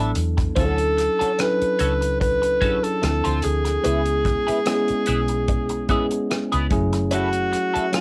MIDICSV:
0, 0, Header, 1, 8, 480
1, 0, Start_track
1, 0, Tempo, 818554
1, 331, Time_signature, 4, 2, 24, 8
1, 4695, End_track
2, 0, Start_track
2, 0, Title_t, "Alto saxophone"
2, 0, Program_c, 0, 65
2, 346, Note_on_c, 0, 69, 90
2, 822, Note_on_c, 0, 71, 98
2, 830, Note_off_c, 0, 69, 0
2, 1292, Note_off_c, 0, 71, 0
2, 1295, Note_on_c, 0, 71, 99
2, 1662, Note_on_c, 0, 69, 91
2, 1671, Note_off_c, 0, 71, 0
2, 2017, Note_on_c, 0, 68, 91
2, 2026, Note_off_c, 0, 69, 0
2, 3935, Note_off_c, 0, 68, 0
2, 4187, Note_on_c, 0, 66, 83
2, 4636, Note_off_c, 0, 66, 0
2, 4667, Note_on_c, 0, 69, 95
2, 4695, Note_off_c, 0, 69, 0
2, 4695, End_track
3, 0, Start_track
3, 0, Title_t, "Clean electric guitar"
3, 0, Program_c, 1, 27
3, 0, Note_on_c, 1, 62, 54
3, 0, Note_on_c, 1, 64, 59
3, 0, Note_on_c, 1, 69, 61
3, 61, Note_off_c, 1, 69, 0
3, 63, Note_off_c, 1, 64, 0
3, 65, Note_off_c, 1, 62, 0
3, 326, Note_on_c, 1, 61, 61
3, 332, Note_on_c, 1, 66, 57
3, 336, Note_on_c, 1, 69, 69
3, 455, Note_off_c, 1, 61, 0
3, 458, Note_off_c, 1, 66, 0
3, 460, Note_off_c, 1, 69, 0
3, 699, Note_on_c, 1, 69, 50
3, 704, Note_on_c, 1, 66, 45
3, 707, Note_on_c, 1, 61, 43
3, 764, Note_off_c, 1, 69, 0
3, 767, Note_off_c, 1, 66, 0
3, 768, Note_off_c, 1, 61, 0
3, 1049, Note_on_c, 1, 61, 52
3, 1056, Note_on_c, 1, 66, 54
3, 1059, Note_on_c, 1, 69, 52
3, 1126, Note_off_c, 1, 61, 0
3, 1129, Note_off_c, 1, 66, 0
3, 1131, Note_off_c, 1, 69, 0
3, 1529, Note_on_c, 1, 61, 60
3, 1533, Note_on_c, 1, 66, 63
3, 1539, Note_on_c, 1, 69, 62
3, 1626, Note_off_c, 1, 61, 0
3, 1629, Note_off_c, 1, 66, 0
3, 1632, Note_off_c, 1, 69, 0
3, 1900, Note_on_c, 1, 69, 63
3, 1903, Note_on_c, 1, 65, 56
3, 1909, Note_on_c, 1, 60, 47
3, 1983, Note_off_c, 1, 69, 0
3, 1985, Note_off_c, 1, 65, 0
3, 1987, Note_off_c, 1, 60, 0
3, 2250, Note_on_c, 1, 59, 65
3, 2255, Note_on_c, 1, 64, 76
3, 2259, Note_on_c, 1, 68, 78
3, 2347, Note_off_c, 1, 59, 0
3, 2350, Note_off_c, 1, 64, 0
3, 2352, Note_off_c, 1, 68, 0
3, 2620, Note_on_c, 1, 68, 42
3, 2625, Note_on_c, 1, 64, 45
3, 2629, Note_on_c, 1, 59, 41
3, 2685, Note_off_c, 1, 68, 0
3, 2687, Note_off_c, 1, 64, 0
3, 2690, Note_off_c, 1, 59, 0
3, 2972, Note_on_c, 1, 59, 55
3, 2977, Note_on_c, 1, 64, 57
3, 2982, Note_on_c, 1, 68, 56
3, 3048, Note_off_c, 1, 59, 0
3, 3050, Note_off_c, 1, 64, 0
3, 3053, Note_off_c, 1, 68, 0
3, 3455, Note_on_c, 1, 59, 62
3, 3460, Note_on_c, 1, 64, 64
3, 3465, Note_on_c, 1, 68, 76
3, 3550, Note_off_c, 1, 59, 0
3, 3552, Note_off_c, 1, 64, 0
3, 3554, Note_off_c, 1, 68, 0
3, 3823, Note_on_c, 1, 68, 68
3, 3829, Note_on_c, 1, 64, 53
3, 3831, Note_on_c, 1, 59, 53
3, 3904, Note_off_c, 1, 68, 0
3, 3907, Note_off_c, 1, 64, 0
3, 3908, Note_off_c, 1, 59, 0
3, 4169, Note_on_c, 1, 61, 63
3, 4175, Note_on_c, 1, 64, 73
3, 4177, Note_on_c, 1, 69, 73
3, 4266, Note_off_c, 1, 61, 0
3, 4269, Note_off_c, 1, 64, 0
3, 4271, Note_off_c, 1, 69, 0
3, 4536, Note_on_c, 1, 69, 53
3, 4538, Note_on_c, 1, 64, 50
3, 4544, Note_on_c, 1, 61, 42
3, 4603, Note_off_c, 1, 69, 0
3, 4604, Note_off_c, 1, 64, 0
3, 4607, Note_off_c, 1, 61, 0
3, 4695, End_track
4, 0, Start_track
4, 0, Title_t, "Tine electric piano"
4, 0, Program_c, 2, 4
4, 0, Control_c, 2, 64, 127
4, 0, Note_on_c, 2, 54, 68
4, 0, Note_on_c, 2, 59, 61
4, 0, Note_on_c, 2, 62, 63
4, 0, Note_on_c, 2, 64, 63
4, 0, Note_on_c, 2, 69, 74
4, 157, Note_off_c, 2, 54, 0
4, 159, Note_off_c, 2, 59, 0
4, 160, Note_off_c, 2, 62, 0
4, 162, Note_off_c, 2, 64, 0
4, 162, Note_off_c, 2, 69, 0
4, 329, Note_on_c, 2, 52, 47
4, 331, Note_on_c, 2, 61, 53
4, 335, Note_on_c, 2, 62, 53
4, 336, Note_on_c, 2, 64, 54
4, 338, Note_on_c, 2, 69, 64
4, 339, Control_c, 2, 64, 0
4, 368, Note_on_c, 2, 54, 60
4, 371, Note_off_c, 2, 52, 0
4, 440, Control_c, 2, 64, 127
4, 704, Note_off_c, 2, 61, 0
4, 706, Note_off_c, 2, 62, 0
4, 707, Note_off_c, 2, 64, 0
4, 708, Note_off_c, 2, 69, 0
4, 723, Note_off_c, 2, 54, 0
4, 813, Note_on_c, 2, 54, 65
4, 814, Note_on_c, 2, 61, 60
4, 816, Note_on_c, 2, 62, 57
4, 821, Note_on_c, 2, 64, 59
4, 822, Note_on_c, 2, 69, 73
4, 1363, Note_off_c, 2, 54, 0
4, 1364, Note_off_c, 2, 61, 0
4, 1365, Note_off_c, 2, 62, 0
4, 1367, Note_off_c, 2, 64, 0
4, 1367, Note_off_c, 2, 69, 0
4, 1540, Note_on_c, 2, 54, 58
4, 1542, Note_on_c, 2, 61, 53
4, 1543, Note_on_c, 2, 62, 52
4, 1547, Note_on_c, 2, 64, 52
4, 1548, Note_on_c, 2, 68, 63
4, 1767, Note_off_c, 2, 62, 0
4, 1769, Note_on_c, 2, 53, 62
4, 1770, Note_off_c, 2, 64, 0
4, 1772, Note_on_c, 2, 60, 60
4, 1774, Note_on_c, 2, 62, 57
4, 1777, Note_off_c, 2, 54, 0
4, 1777, Note_on_c, 2, 64, 56
4, 1778, Note_off_c, 2, 61, 0
4, 1779, Control_c, 2, 64, 0
4, 1781, Note_off_c, 2, 68, 0
4, 1782, Note_on_c, 2, 69, 72
4, 1872, Control_c, 2, 64, 127
4, 2163, Note_off_c, 2, 53, 0
4, 2164, Note_off_c, 2, 60, 0
4, 2165, Note_off_c, 2, 62, 0
4, 2167, Note_off_c, 2, 64, 0
4, 2169, Note_off_c, 2, 69, 0
4, 2248, Note_on_c, 2, 56, 63
4, 2248, Note_on_c, 2, 59, 54
4, 2252, Note_on_c, 2, 61, 54
4, 2256, Note_on_c, 2, 64, 56
4, 2257, Note_on_c, 2, 68, 67
4, 2261, Control_c, 2, 64, 0
4, 2346, Control_c, 2, 64, 127
4, 2623, Note_off_c, 2, 56, 0
4, 2623, Note_off_c, 2, 59, 0
4, 2625, Note_off_c, 2, 61, 0
4, 2627, Note_off_c, 2, 64, 0
4, 2627, Note_off_c, 2, 68, 0
4, 2731, Note_on_c, 2, 56, 78
4, 2734, Note_on_c, 2, 59, 75
4, 2739, Note_on_c, 2, 61, 73
4, 2740, Note_on_c, 2, 64, 69
4, 2741, Note_on_c, 2, 68, 88
4, 3282, Note_off_c, 2, 56, 0
4, 3284, Note_off_c, 2, 59, 0
4, 3286, Note_off_c, 2, 61, 0
4, 3287, Note_off_c, 2, 64, 0
4, 3287, Note_off_c, 2, 68, 0
4, 3452, Note_on_c, 2, 56, 72
4, 3455, Note_on_c, 2, 59, 65
4, 3457, Note_on_c, 2, 61, 66
4, 3461, Note_on_c, 2, 64, 61
4, 3465, Note_on_c, 2, 68, 76
4, 3929, Note_off_c, 2, 61, 0
4, 3929, Note_on_c, 2, 54, 86
4, 3932, Note_off_c, 2, 56, 0
4, 3933, Note_off_c, 2, 64, 0
4, 3933, Note_off_c, 2, 68, 0
4, 3933, Note_on_c, 2, 57, 74
4, 3934, Note_off_c, 2, 59, 0
4, 3936, Note_on_c, 2, 61, 78
4, 3940, Note_on_c, 2, 64, 77
4, 3940, Note_on_c, 2, 68, 91
4, 3941, Control_c, 2, 64, 0
4, 4030, Control_c, 2, 64, 127
4, 4514, Note_off_c, 2, 54, 0
4, 4516, Note_off_c, 2, 57, 0
4, 4518, Note_off_c, 2, 61, 0
4, 4520, Note_off_c, 2, 64, 0
4, 4520, Note_off_c, 2, 68, 0
4, 4645, Note_on_c, 2, 54, 70
4, 4649, Note_on_c, 2, 57, 64
4, 4651, Note_on_c, 2, 61, 64
4, 4655, Note_on_c, 2, 64, 65
4, 4658, Note_on_c, 2, 80, 76
4, 4695, Note_off_c, 2, 54, 0
4, 4695, Note_off_c, 2, 57, 0
4, 4695, Note_off_c, 2, 61, 0
4, 4695, Note_off_c, 2, 64, 0
4, 4695, Note_off_c, 2, 80, 0
4, 4695, End_track
5, 0, Start_track
5, 0, Title_t, "Fingered electric bass"
5, 0, Program_c, 3, 33
5, 0, Note_on_c, 3, 33, 77
5, 69, Note_off_c, 3, 33, 0
5, 95, Note_on_c, 3, 40, 86
5, 285, Note_off_c, 3, 40, 0
5, 335, Note_on_c, 3, 38, 86
5, 628, Note_off_c, 3, 38, 0
5, 1058, Note_on_c, 3, 37, 74
5, 1642, Note_off_c, 3, 37, 0
5, 1779, Note_on_c, 3, 38, 86
5, 1880, Note_off_c, 3, 38, 0
5, 1912, Note_on_c, 3, 38, 79
5, 1996, Note_off_c, 3, 38, 0
5, 2023, Note_on_c, 3, 38, 70
5, 2210, Note_off_c, 3, 38, 0
5, 2262, Note_on_c, 3, 37, 91
5, 2552, Note_off_c, 3, 37, 0
5, 2981, Note_on_c, 3, 35, 75
5, 3563, Note_off_c, 3, 35, 0
5, 3832, Note_on_c, 3, 37, 77
5, 3916, Note_off_c, 3, 37, 0
5, 3936, Note_on_c, 3, 30, 86
5, 4420, Note_off_c, 3, 30, 0
5, 4695, End_track
6, 0, Start_track
6, 0, Title_t, "Muted clean electric guitar strokes"
6, 93, Note_on_c, 9, 29, 29
6, 151, Note_off_c, 9, 29, 0
6, 219, Note_on_c, 9, 29, 39
6, 278, Note_off_c, 9, 29, 0
6, 571, Note_on_c, 9, 29, 29
6, 629, Note_off_c, 9, 29, 0
6, 811, Note_on_c, 9, 29, 36
6, 869, Note_off_c, 9, 29, 0
6, 1180, Note_on_c, 9, 29, 34
6, 1238, Note_off_c, 9, 29, 0
6, 1290, Note_on_c, 9, 29, 37
6, 1349, Note_off_c, 9, 29, 0
6, 1419, Note_on_c, 9, 29, 37
6, 1478, Note_off_c, 9, 29, 0
6, 1661, Note_on_c, 9, 29, 42
6, 1720, Note_off_c, 9, 29, 0
6, 1770, Note_on_c, 9, 29, 35
6, 1828, Note_off_c, 9, 29, 0
6, 2016, Note_on_c, 9, 29, 41
6, 2075, Note_off_c, 9, 29, 0
6, 2139, Note_on_c, 9, 29, 39
6, 2198, Note_off_c, 9, 29, 0
6, 2492, Note_on_c, 9, 29, 36
6, 2550, Note_off_c, 9, 29, 0
6, 2735, Note_on_c, 9, 29, 35
6, 2793, Note_off_c, 9, 29, 0
6, 3104, Note_on_c, 9, 29, 33
6, 3163, Note_off_c, 9, 29, 0
6, 3217, Note_on_c, 9, 29, 39
6, 3275, Note_off_c, 9, 29, 0
6, 3342, Note_on_c, 9, 29, 35
6, 3401, Note_off_c, 9, 29, 0
6, 3587, Note_on_c, 9, 29, 35
6, 3645, Note_off_c, 9, 29, 0
6, 3697, Note_on_c, 9, 29, 30
6, 3755, Note_off_c, 9, 29, 0
6, 3937, Note_on_c, 9, 29, 40
6, 3996, Note_off_c, 9, 29, 0
6, 4063, Note_on_c, 9, 29, 45
6, 4122, Note_off_c, 9, 29, 0
6, 4408, Note_on_c, 9, 29, 34
6, 4467, Note_off_c, 9, 29, 0
6, 4646, Note_on_c, 9, 29, 31
6, 4695, Note_off_c, 9, 29, 0
6, 4695, End_track
7, 0, Start_track
7, 0, Title_t, "Muted fingered electric bass strokes"
7, 711, Note_on_c, 9, 29, 36
7, 770, Note_off_c, 9, 29, 0
7, 948, Note_on_c, 9, 29, 39
7, 1007, Note_off_c, 9, 29, 0
7, 2632, Note_on_c, 9, 29, 39
7, 2691, Note_off_c, 9, 29, 0
7, 2873, Note_on_c, 9, 29, 39
7, 2932, Note_off_c, 9, 29, 0
7, 4550, Note_on_c, 9, 29, 39
7, 4609, Note_off_c, 9, 29, 0
7, 4695, End_track
8, 0, Start_track
8, 0, Title_t, "Drums"
8, 88, Note_on_c, 9, 42, 73
8, 147, Note_off_c, 9, 42, 0
8, 221, Note_on_c, 9, 42, 50
8, 222, Note_on_c, 9, 36, 78
8, 227, Note_on_c, 9, 37, 29
8, 279, Note_off_c, 9, 42, 0
8, 281, Note_off_c, 9, 36, 0
8, 286, Note_off_c, 9, 37, 0
8, 329, Note_on_c, 9, 42, 76
8, 332, Note_on_c, 9, 36, 98
8, 388, Note_off_c, 9, 42, 0
8, 391, Note_off_c, 9, 36, 0
8, 458, Note_on_c, 9, 42, 44
8, 517, Note_off_c, 9, 42, 0
8, 575, Note_on_c, 9, 42, 54
8, 582, Note_on_c, 9, 37, 29
8, 634, Note_off_c, 9, 42, 0
8, 641, Note_off_c, 9, 37, 0
8, 710, Note_on_c, 9, 42, 48
8, 768, Note_off_c, 9, 42, 0
8, 813, Note_on_c, 9, 42, 79
8, 820, Note_on_c, 9, 37, 103
8, 872, Note_off_c, 9, 42, 0
8, 879, Note_off_c, 9, 37, 0
8, 947, Note_on_c, 9, 42, 41
8, 1006, Note_off_c, 9, 42, 0
8, 1051, Note_on_c, 9, 42, 69
8, 1109, Note_off_c, 9, 42, 0
8, 1185, Note_on_c, 9, 42, 45
8, 1244, Note_off_c, 9, 42, 0
8, 1298, Note_on_c, 9, 36, 78
8, 1299, Note_on_c, 9, 42, 77
8, 1356, Note_off_c, 9, 36, 0
8, 1358, Note_off_c, 9, 42, 0
8, 1424, Note_on_c, 9, 42, 48
8, 1483, Note_off_c, 9, 42, 0
8, 1534, Note_on_c, 9, 42, 53
8, 1535, Note_on_c, 9, 36, 75
8, 1593, Note_off_c, 9, 36, 0
8, 1593, Note_off_c, 9, 42, 0
8, 1664, Note_on_c, 9, 42, 47
8, 1723, Note_off_c, 9, 42, 0
8, 1777, Note_on_c, 9, 42, 73
8, 1781, Note_on_c, 9, 37, 91
8, 1836, Note_off_c, 9, 42, 0
8, 1840, Note_off_c, 9, 37, 0
8, 1903, Note_on_c, 9, 42, 39
8, 1962, Note_off_c, 9, 42, 0
8, 2007, Note_on_c, 9, 42, 74
8, 2065, Note_off_c, 9, 42, 0
8, 2141, Note_on_c, 9, 42, 50
8, 2148, Note_on_c, 9, 37, 28
8, 2200, Note_off_c, 9, 42, 0
8, 2207, Note_off_c, 9, 37, 0
8, 2254, Note_on_c, 9, 42, 75
8, 2312, Note_off_c, 9, 42, 0
8, 2378, Note_on_c, 9, 42, 45
8, 2437, Note_off_c, 9, 42, 0
8, 2493, Note_on_c, 9, 36, 78
8, 2494, Note_on_c, 9, 42, 52
8, 2501, Note_on_c, 9, 37, 28
8, 2552, Note_off_c, 9, 36, 0
8, 2553, Note_off_c, 9, 42, 0
8, 2560, Note_off_c, 9, 37, 0
8, 2628, Note_on_c, 9, 42, 50
8, 2686, Note_off_c, 9, 42, 0
8, 2731, Note_on_c, 9, 42, 84
8, 2738, Note_on_c, 9, 37, 108
8, 2789, Note_off_c, 9, 42, 0
8, 2797, Note_off_c, 9, 37, 0
8, 2861, Note_on_c, 9, 42, 40
8, 2920, Note_off_c, 9, 42, 0
8, 2966, Note_on_c, 9, 42, 69
8, 3024, Note_off_c, 9, 42, 0
8, 3097, Note_on_c, 9, 42, 47
8, 3155, Note_off_c, 9, 42, 0
8, 3214, Note_on_c, 9, 42, 79
8, 3216, Note_on_c, 9, 36, 76
8, 3272, Note_off_c, 9, 42, 0
8, 3274, Note_off_c, 9, 36, 0
8, 3337, Note_on_c, 9, 42, 48
8, 3396, Note_off_c, 9, 42, 0
8, 3451, Note_on_c, 9, 42, 50
8, 3454, Note_on_c, 9, 36, 78
8, 3510, Note_off_c, 9, 42, 0
8, 3512, Note_off_c, 9, 36, 0
8, 3581, Note_on_c, 9, 42, 48
8, 3639, Note_off_c, 9, 42, 0
8, 3699, Note_on_c, 9, 42, 69
8, 3703, Note_on_c, 9, 37, 97
8, 3757, Note_off_c, 9, 42, 0
8, 3761, Note_off_c, 9, 37, 0
8, 3824, Note_on_c, 9, 42, 41
8, 3883, Note_off_c, 9, 42, 0
8, 3931, Note_on_c, 9, 42, 75
8, 3933, Note_on_c, 9, 36, 87
8, 3990, Note_off_c, 9, 42, 0
8, 3991, Note_off_c, 9, 36, 0
8, 4061, Note_on_c, 9, 42, 52
8, 4068, Note_on_c, 9, 37, 29
8, 4120, Note_off_c, 9, 42, 0
8, 4127, Note_off_c, 9, 37, 0
8, 4169, Note_on_c, 9, 42, 77
8, 4227, Note_off_c, 9, 42, 0
8, 4296, Note_on_c, 9, 42, 45
8, 4354, Note_off_c, 9, 42, 0
8, 4415, Note_on_c, 9, 42, 52
8, 4422, Note_on_c, 9, 37, 28
8, 4474, Note_off_c, 9, 42, 0
8, 4480, Note_off_c, 9, 37, 0
8, 4546, Note_on_c, 9, 42, 44
8, 4605, Note_off_c, 9, 42, 0
8, 4649, Note_on_c, 9, 42, 85
8, 4656, Note_on_c, 9, 37, 107
8, 4695, Note_off_c, 9, 37, 0
8, 4695, Note_off_c, 9, 42, 0
8, 4695, End_track
0, 0, End_of_file